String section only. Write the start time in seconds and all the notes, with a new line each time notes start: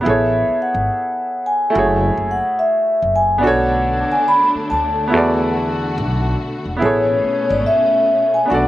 3.42 D3 A3 D4
5.12 D3 F#4
6.80 B2 A3 C#4
8.49 D3 A3 D4